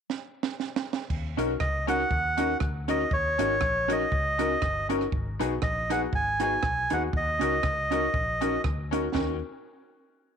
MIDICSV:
0, 0, Header, 1, 6, 480
1, 0, Start_track
1, 0, Key_signature, -6, "minor"
1, 0, Tempo, 502934
1, 1054, Time_signature, 4, 2, 24, 8
1, 9895, End_track
2, 0, Start_track
2, 0, Title_t, "Melodica"
2, 0, Program_c, 0, 22
2, 1527, Note_on_c, 0, 75, 93
2, 1778, Note_off_c, 0, 75, 0
2, 1803, Note_on_c, 0, 78, 113
2, 2458, Note_off_c, 0, 78, 0
2, 2765, Note_on_c, 0, 75, 101
2, 2984, Note_off_c, 0, 75, 0
2, 2986, Note_on_c, 0, 73, 110
2, 3740, Note_on_c, 0, 75, 105
2, 3748, Note_off_c, 0, 73, 0
2, 4651, Note_off_c, 0, 75, 0
2, 5375, Note_on_c, 0, 75, 97
2, 5646, Note_on_c, 0, 78, 96
2, 5647, Note_off_c, 0, 75, 0
2, 5741, Note_off_c, 0, 78, 0
2, 5871, Note_on_c, 0, 80, 101
2, 6121, Note_off_c, 0, 80, 0
2, 6135, Note_on_c, 0, 80, 105
2, 6614, Note_on_c, 0, 78, 90
2, 6619, Note_off_c, 0, 80, 0
2, 6707, Note_off_c, 0, 78, 0
2, 6840, Note_on_c, 0, 75, 99
2, 8225, Note_off_c, 0, 75, 0
2, 9895, End_track
3, 0, Start_track
3, 0, Title_t, "Clean electric guitar"
3, 0, Program_c, 1, 27
3, 1312, Note_on_c, 1, 61, 75
3, 1320, Note_on_c, 1, 66, 84
3, 1324, Note_on_c, 1, 70, 85
3, 1459, Note_off_c, 1, 61, 0
3, 1463, Note_off_c, 1, 66, 0
3, 1465, Note_off_c, 1, 70, 0
3, 1793, Note_on_c, 1, 61, 83
3, 1802, Note_on_c, 1, 66, 77
3, 1813, Note_on_c, 1, 70, 89
3, 1939, Note_off_c, 1, 61, 0
3, 1944, Note_off_c, 1, 66, 0
3, 1949, Note_off_c, 1, 70, 0
3, 2271, Note_on_c, 1, 61, 77
3, 2280, Note_on_c, 1, 66, 73
3, 2293, Note_on_c, 1, 70, 83
3, 2419, Note_off_c, 1, 61, 0
3, 2423, Note_off_c, 1, 66, 0
3, 2429, Note_off_c, 1, 70, 0
3, 2749, Note_on_c, 1, 61, 76
3, 2762, Note_on_c, 1, 66, 81
3, 2770, Note_on_c, 1, 70, 84
3, 2897, Note_off_c, 1, 61, 0
3, 2904, Note_off_c, 1, 66, 0
3, 2908, Note_off_c, 1, 70, 0
3, 3232, Note_on_c, 1, 61, 82
3, 3244, Note_on_c, 1, 66, 88
3, 3250, Note_on_c, 1, 70, 87
3, 3379, Note_off_c, 1, 61, 0
3, 3385, Note_off_c, 1, 66, 0
3, 3388, Note_off_c, 1, 70, 0
3, 3704, Note_on_c, 1, 61, 69
3, 3709, Note_on_c, 1, 66, 72
3, 3719, Note_on_c, 1, 70, 80
3, 3855, Note_off_c, 1, 61, 0
3, 3857, Note_off_c, 1, 66, 0
3, 3862, Note_off_c, 1, 70, 0
3, 4190, Note_on_c, 1, 61, 73
3, 4201, Note_on_c, 1, 66, 77
3, 4207, Note_on_c, 1, 70, 81
3, 4337, Note_off_c, 1, 61, 0
3, 4343, Note_off_c, 1, 66, 0
3, 4346, Note_off_c, 1, 70, 0
3, 4672, Note_on_c, 1, 61, 72
3, 4684, Note_on_c, 1, 66, 80
3, 4686, Note_on_c, 1, 70, 83
3, 4818, Note_off_c, 1, 61, 0
3, 4824, Note_off_c, 1, 66, 0
3, 4825, Note_off_c, 1, 70, 0
3, 5153, Note_on_c, 1, 63, 83
3, 5167, Note_on_c, 1, 66, 87
3, 5169, Note_on_c, 1, 71, 95
3, 5298, Note_off_c, 1, 63, 0
3, 5305, Note_off_c, 1, 66, 0
3, 5306, Note_off_c, 1, 71, 0
3, 5631, Note_on_c, 1, 63, 71
3, 5643, Note_on_c, 1, 66, 78
3, 5649, Note_on_c, 1, 71, 83
3, 5777, Note_off_c, 1, 63, 0
3, 5783, Note_off_c, 1, 66, 0
3, 5786, Note_off_c, 1, 71, 0
3, 6105, Note_on_c, 1, 63, 83
3, 6117, Note_on_c, 1, 66, 88
3, 6126, Note_on_c, 1, 71, 92
3, 6254, Note_off_c, 1, 63, 0
3, 6259, Note_off_c, 1, 66, 0
3, 6264, Note_off_c, 1, 71, 0
3, 6591, Note_on_c, 1, 63, 82
3, 6609, Note_on_c, 1, 66, 86
3, 6613, Note_on_c, 1, 71, 89
3, 6736, Note_off_c, 1, 63, 0
3, 6745, Note_off_c, 1, 66, 0
3, 6747, Note_off_c, 1, 71, 0
3, 7057, Note_on_c, 1, 61, 78
3, 7069, Note_on_c, 1, 66, 101
3, 7081, Note_on_c, 1, 70, 90
3, 7209, Note_off_c, 1, 61, 0
3, 7215, Note_off_c, 1, 66, 0
3, 7221, Note_off_c, 1, 70, 0
3, 7547, Note_on_c, 1, 61, 70
3, 7561, Note_on_c, 1, 66, 77
3, 7565, Note_on_c, 1, 70, 79
3, 7693, Note_off_c, 1, 61, 0
3, 7700, Note_off_c, 1, 66, 0
3, 7702, Note_off_c, 1, 70, 0
3, 8036, Note_on_c, 1, 61, 80
3, 8046, Note_on_c, 1, 66, 86
3, 8054, Note_on_c, 1, 70, 93
3, 8178, Note_off_c, 1, 61, 0
3, 8183, Note_off_c, 1, 66, 0
3, 8187, Note_off_c, 1, 70, 0
3, 8518, Note_on_c, 1, 61, 83
3, 8526, Note_on_c, 1, 66, 83
3, 8537, Note_on_c, 1, 70, 94
3, 8658, Note_off_c, 1, 61, 0
3, 8662, Note_off_c, 1, 66, 0
3, 8668, Note_off_c, 1, 70, 0
3, 8733, Note_on_c, 1, 61, 79
3, 8739, Note_on_c, 1, 66, 80
3, 8749, Note_on_c, 1, 70, 94
3, 8890, Note_off_c, 1, 61, 0
3, 8893, Note_off_c, 1, 66, 0
3, 8898, Note_off_c, 1, 70, 0
3, 9895, End_track
4, 0, Start_track
4, 0, Title_t, "Upright piano"
4, 0, Program_c, 2, 0
4, 1309, Note_on_c, 2, 61, 84
4, 1312, Note_on_c, 2, 63, 80
4, 1316, Note_on_c, 2, 66, 84
4, 1322, Note_on_c, 2, 70, 102
4, 1428, Note_off_c, 2, 61, 0
4, 1430, Note_off_c, 2, 63, 0
4, 1431, Note_off_c, 2, 66, 0
4, 1434, Note_off_c, 2, 70, 0
4, 1787, Note_on_c, 2, 61, 93
4, 1791, Note_on_c, 2, 63, 77
4, 1794, Note_on_c, 2, 66, 79
4, 1796, Note_on_c, 2, 70, 96
4, 1907, Note_off_c, 2, 61, 0
4, 1909, Note_off_c, 2, 63, 0
4, 1911, Note_off_c, 2, 66, 0
4, 1912, Note_off_c, 2, 70, 0
4, 2263, Note_on_c, 2, 61, 82
4, 2267, Note_on_c, 2, 63, 79
4, 2271, Note_on_c, 2, 66, 78
4, 2275, Note_on_c, 2, 70, 88
4, 2386, Note_off_c, 2, 61, 0
4, 2387, Note_off_c, 2, 63, 0
4, 2389, Note_off_c, 2, 66, 0
4, 2391, Note_off_c, 2, 70, 0
4, 2749, Note_on_c, 2, 61, 85
4, 2753, Note_on_c, 2, 63, 80
4, 2754, Note_on_c, 2, 66, 74
4, 2761, Note_on_c, 2, 70, 94
4, 2868, Note_off_c, 2, 61, 0
4, 2870, Note_off_c, 2, 63, 0
4, 2871, Note_off_c, 2, 66, 0
4, 2874, Note_off_c, 2, 70, 0
4, 3230, Note_on_c, 2, 61, 91
4, 3235, Note_on_c, 2, 63, 84
4, 3238, Note_on_c, 2, 66, 85
4, 3241, Note_on_c, 2, 70, 93
4, 3349, Note_off_c, 2, 61, 0
4, 3351, Note_off_c, 2, 63, 0
4, 3353, Note_off_c, 2, 66, 0
4, 3354, Note_off_c, 2, 70, 0
4, 3706, Note_on_c, 2, 61, 91
4, 3708, Note_on_c, 2, 63, 78
4, 3711, Note_on_c, 2, 66, 81
4, 3714, Note_on_c, 2, 70, 99
4, 3826, Note_off_c, 2, 61, 0
4, 3827, Note_off_c, 2, 63, 0
4, 3829, Note_off_c, 2, 66, 0
4, 3830, Note_off_c, 2, 70, 0
4, 4184, Note_on_c, 2, 61, 81
4, 4187, Note_on_c, 2, 63, 76
4, 4191, Note_on_c, 2, 66, 76
4, 4196, Note_on_c, 2, 70, 93
4, 4305, Note_off_c, 2, 61, 0
4, 4307, Note_off_c, 2, 63, 0
4, 4309, Note_off_c, 2, 66, 0
4, 4311, Note_off_c, 2, 70, 0
4, 4668, Note_on_c, 2, 61, 86
4, 4670, Note_on_c, 2, 63, 75
4, 4676, Note_on_c, 2, 66, 76
4, 4679, Note_on_c, 2, 70, 100
4, 4787, Note_off_c, 2, 61, 0
4, 4788, Note_off_c, 2, 63, 0
4, 4791, Note_off_c, 2, 66, 0
4, 4793, Note_off_c, 2, 70, 0
4, 5149, Note_on_c, 2, 59, 97
4, 5153, Note_on_c, 2, 63, 83
4, 5157, Note_on_c, 2, 66, 84
4, 5161, Note_on_c, 2, 68, 97
4, 5267, Note_off_c, 2, 59, 0
4, 5269, Note_off_c, 2, 63, 0
4, 5271, Note_off_c, 2, 66, 0
4, 5273, Note_off_c, 2, 68, 0
4, 5628, Note_on_c, 2, 59, 82
4, 5631, Note_on_c, 2, 63, 78
4, 5637, Note_on_c, 2, 66, 80
4, 5642, Note_on_c, 2, 68, 100
4, 5746, Note_off_c, 2, 59, 0
4, 5748, Note_off_c, 2, 63, 0
4, 5751, Note_off_c, 2, 66, 0
4, 5753, Note_off_c, 2, 68, 0
4, 6107, Note_on_c, 2, 59, 84
4, 6113, Note_on_c, 2, 63, 80
4, 6115, Note_on_c, 2, 66, 79
4, 6118, Note_on_c, 2, 68, 92
4, 6225, Note_off_c, 2, 59, 0
4, 6228, Note_off_c, 2, 63, 0
4, 6229, Note_off_c, 2, 66, 0
4, 6231, Note_off_c, 2, 68, 0
4, 6589, Note_on_c, 2, 59, 84
4, 6591, Note_on_c, 2, 63, 76
4, 6596, Note_on_c, 2, 66, 75
4, 6600, Note_on_c, 2, 68, 88
4, 6706, Note_off_c, 2, 59, 0
4, 6707, Note_off_c, 2, 63, 0
4, 6709, Note_off_c, 2, 66, 0
4, 6711, Note_off_c, 2, 68, 0
4, 7069, Note_on_c, 2, 61, 83
4, 7074, Note_on_c, 2, 63, 84
4, 7077, Note_on_c, 2, 66, 82
4, 7082, Note_on_c, 2, 70, 96
4, 7185, Note_off_c, 2, 61, 0
4, 7188, Note_off_c, 2, 63, 0
4, 7189, Note_off_c, 2, 66, 0
4, 7192, Note_off_c, 2, 70, 0
4, 7552, Note_on_c, 2, 61, 86
4, 7557, Note_on_c, 2, 63, 82
4, 7558, Note_on_c, 2, 66, 79
4, 7561, Note_on_c, 2, 70, 95
4, 7667, Note_off_c, 2, 61, 0
4, 7669, Note_off_c, 2, 63, 0
4, 7670, Note_off_c, 2, 66, 0
4, 7671, Note_off_c, 2, 70, 0
4, 8025, Note_on_c, 2, 61, 86
4, 8029, Note_on_c, 2, 63, 78
4, 8034, Note_on_c, 2, 66, 76
4, 8037, Note_on_c, 2, 70, 85
4, 8143, Note_off_c, 2, 61, 0
4, 8145, Note_off_c, 2, 63, 0
4, 8147, Note_off_c, 2, 66, 0
4, 8149, Note_off_c, 2, 70, 0
4, 8506, Note_on_c, 2, 61, 85
4, 8512, Note_on_c, 2, 63, 75
4, 8516, Note_on_c, 2, 66, 80
4, 8519, Note_on_c, 2, 70, 94
4, 8623, Note_off_c, 2, 61, 0
4, 8626, Note_off_c, 2, 63, 0
4, 8628, Note_off_c, 2, 66, 0
4, 8630, Note_off_c, 2, 70, 0
4, 8722, Note_on_c, 2, 61, 77
4, 8725, Note_on_c, 2, 63, 68
4, 8727, Note_on_c, 2, 66, 66
4, 8733, Note_on_c, 2, 70, 86
4, 8922, Note_off_c, 2, 61, 0
4, 8924, Note_off_c, 2, 63, 0
4, 8925, Note_off_c, 2, 66, 0
4, 8928, Note_off_c, 2, 70, 0
4, 9895, End_track
5, 0, Start_track
5, 0, Title_t, "Fingered electric bass"
5, 0, Program_c, 3, 33
5, 1051, Note_on_c, 3, 39, 94
5, 1279, Note_off_c, 3, 39, 0
5, 1309, Note_on_c, 3, 35, 87
5, 1496, Note_off_c, 3, 35, 0
5, 1527, Note_on_c, 3, 37, 87
5, 1939, Note_off_c, 3, 37, 0
5, 2015, Note_on_c, 3, 39, 88
5, 2423, Note_off_c, 3, 39, 0
5, 2491, Note_on_c, 3, 38, 91
5, 2901, Note_off_c, 3, 38, 0
5, 2970, Note_on_c, 3, 39, 101
5, 3198, Note_off_c, 3, 39, 0
5, 3230, Note_on_c, 3, 32, 95
5, 3416, Note_off_c, 3, 32, 0
5, 3448, Note_on_c, 3, 34, 85
5, 3859, Note_off_c, 3, 34, 0
5, 3931, Note_on_c, 3, 37, 96
5, 4340, Note_off_c, 3, 37, 0
5, 4413, Note_on_c, 3, 31, 91
5, 4821, Note_off_c, 3, 31, 0
5, 4893, Note_on_c, 3, 32, 103
5, 5119, Note_off_c, 3, 32, 0
5, 5154, Note_on_c, 3, 35, 83
5, 5338, Note_off_c, 3, 35, 0
5, 5369, Note_on_c, 3, 34, 96
5, 5778, Note_off_c, 3, 34, 0
5, 5848, Note_on_c, 3, 32, 94
5, 6257, Note_off_c, 3, 32, 0
5, 6331, Note_on_c, 3, 35, 82
5, 6557, Note_off_c, 3, 35, 0
5, 6602, Note_on_c, 3, 39, 89
5, 6782, Note_off_c, 3, 39, 0
5, 6807, Note_on_c, 3, 39, 105
5, 7034, Note_off_c, 3, 39, 0
5, 7069, Note_on_c, 3, 37, 74
5, 7254, Note_off_c, 3, 37, 0
5, 7292, Note_on_c, 3, 37, 90
5, 7698, Note_off_c, 3, 37, 0
5, 7769, Note_on_c, 3, 34, 81
5, 8177, Note_off_c, 3, 34, 0
5, 8252, Note_on_c, 3, 38, 86
5, 8658, Note_off_c, 3, 38, 0
5, 8729, Note_on_c, 3, 39, 100
5, 8975, Note_off_c, 3, 39, 0
5, 9895, End_track
6, 0, Start_track
6, 0, Title_t, "Drums"
6, 94, Note_on_c, 9, 38, 57
6, 189, Note_off_c, 9, 38, 0
6, 412, Note_on_c, 9, 38, 77
6, 507, Note_off_c, 9, 38, 0
6, 570, Note_on_c, 9, 38, 70
6, 666, Note_off_c, 9, 38, 0
6, 728, Note_on_c, 9, 38, 97
6, 824, Note_off_c, 9, 38, 0
6, 889, Note_on_c, 9, 38, 95
6, 984, Note_off_c, 9, 38, 0
6, 1050, Note_on_c, 9, 49, 77
6, 1051, Note_on_c, 9, 36, 104
6, 1145, Note_off_c, 9, 49, 0
6, 1146, Note_off_c, 9, 36, 0
6, 1322, Note_on_c, 9, 42, 87
6, 1417, Note_off_c, 9, 42, 0
6, 1528, Note_on_c, 9, 37, 113
6, 1531, Note_on_c, 9, 36, 116
6, 1623, Note_off_c, 9, 37, 0
6, 1626, Note_off_c, 9, 36, 0
6, 1797, Note_on_c, 9, 42, 89
6, 1892, Note_off_c, 9, 42, 0
6, 2011, Note_on_c, 9, 36, 108
6, 2106, Note_off_c, 9, 36, 0
6, 2268, Note_on_c, 9, 42, 88
6, 2364, Note_off_c, 9, 42, 0
6, 2485, Note_on_c, 9, 37, 107
6, 2491, Note_on_c, 9, 36, 108
6, 2580, Note_off_c, 9, 37, 0
6, 2586, Note_off_c, 9, 36, 0
6, 2753, Note_on_c, 9, 42, 80
6, 2848, Note_off_c, 9, 42, 0
6, 2970, Note_on_c, 9, 36, 100
6, 3065, Note_off_c, 9, 36, 0
6, 3236, Note_on_c, 9, 42, 94
6, 3332, Note_off_c, 9, 42, 0
6, 3443, Note_on_c, 9, 37, 118
6, 3450, Note_on_c, 9, 36, 109
6, 3538, Note_off_c, 9, 37, 0
6, 3546, Note_off_c, 9, 36, 0
6, 3719, Note_on_c, 9, 42, 87
6, 3815, Note_off_c, 9, 42, 0
6, 3930, Note_on_c, 9, 36, 97
6, 4025, Note_off_c, 9, 36, 0
6, 4190, Note_on_c, 9, 42, 87
6, 4285, Note_off_c, 9, 42, 0
6, 4408, Note_on_c, 9, 37, 114
6, 4411, Note_on_c, 9, 36, 107
6, 4503, Note_off_c, 9, 37, 0
6, 4507, Note_off_c, 9, 36, 0
6, 4674, Note_on_c, 9, 42, 81
6, 4769, Note_off_c, 9, 42, 0
6, 4782, Note_on_c, 9, 37, 61
6, 4878, Note_off_c, 9, 37, 0
6, 4890, Note_on_c, 9, 36, 110
6, 4985, Note_off_c, 9, 36, 0
6, 5159, Note_on_c, 9, 42, 92
6, 5254, Note_off_c, 9, 42, 0
6, 5362, Note_on_c, 9, 37, 108
6, 5369, Note_on_c, 9, 36, 122
6, 5457, Note_off_c, 9, 37, 0
6, 5465, Note_off_c, 9, 36, 0
6, 5634, Note_on_c, 9, 42, 83
6, 5730, Note_off_c, 9, 42, 0
6, 5848, Note_on_c, 9, 36, 105
6, 5944, Note_off_c, 9, 36, 0
6, 6106, Note_on_c, 9, 42, 86
6, 6201, Note_off_c, 9, 42, 0
6, 6324, Note_on_c, 9, 37, 107
6, 6329, Note_on_c, 9, 36, 106
6, 6419, Note_off_c, 9, 37, 0
6, 6424, Note_off_c, 9, 36, 0
6, 6587, Note_on_c, 9, 42, 84
6, 6682, Note_off_c, 9, 42, 0
6, 6807, Note_on_c, 9, 36, 104
6, 6902, Note_off_c, 9, 36, 0
6, 7073, Note_on_c, 9, 42, 90
6, 7168, Note_off_c, 9, 42, 0
6, 7284, Note_on_c, 9, 37, 120
6, 7289, Note_on_c, 9, 36, 122
6, 7380, Note_off_c, 9, 37, 0
6, 7384, Note_off_c, 9, 36, 0
6, 7556, Note_on_c, 9, 42, 79
6, 7651, Note_off_c, 9, 42, 0
6, 7768, Note_on_c, 9, 36, 109
6, 7864, Note_off_c, 9, 36, 0
6, 8031, Note_on_c, 9, 42, 83
6, 8126, Note_off_c, 9, 42, 0
6, 8248, Note_on_c, 9, 37, 104
6, 8251, Note_on_c, 9, 36, 106
6, 8344, Note_off_c, 9, 37, 0
6, 8346, Note_off_c, 9, 36, 0
6, 8520, Note_on_c, 9, 42, 78
6, 8615, Note_off_c, 9, 42, 0
6, 8730, Note_on_c, 9, 36, 102
6, 8732, Note_on_c, 9, 38, 98
6, 8826, Note_off_c, 9, 36, 0
6, 8827, Note_off_c, 9, 38, 0
6, 9895, End_track
0, 0, End_of_file